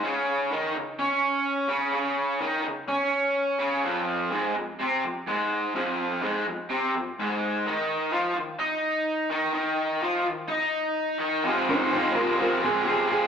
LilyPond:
<<
  \new Staff \with { instrumentName = "Electric slide guitar" } { \time 4/4 \key f \minor \tempo 4 = 126 r1 | r1 | r1 | r1 |
r1 | r1 | r8 <ees' c''>8 <ees' c''>8 <f' bes'>8 <f' bes'>8 <c' aes'>8 <c' aes'>8 aes'8 | }
  \new Staff \with { instrumentName = "Overdriven electric guitar" } { \clef bass \time 4/4 \key f \minor <des des'>4 <ees ees'>8 des8 <des' des''>4. <des des'>8 | <des des'>4 <ees ees'>8 des8 <des' des''>4. <des des'>8 | <f, f>4 <aes, aes>8 f,8 <c c'>8 f,8 <aes, aes>4 | <f, f>4 <aes, aes>8 f,8 <c c'>8 f,8 <aes, aes>4 |
<ees ees'>4 <f f'>8 ees8 <ees' ees''>4. <ees ees'>8 | <ees ees'>4 <f f'>8 ees8 <ees' ees''>4. <ees ees'>8 | <f, c f aes c' f'>8 <f aes c' f'>8 <f aes c' f'>8 <f, c f aes c' f'>8 <f aes c' f'>8 <f aes c' f'>8 <f, c f aes c' f'>8 <f aes c' f'>8 | }
>>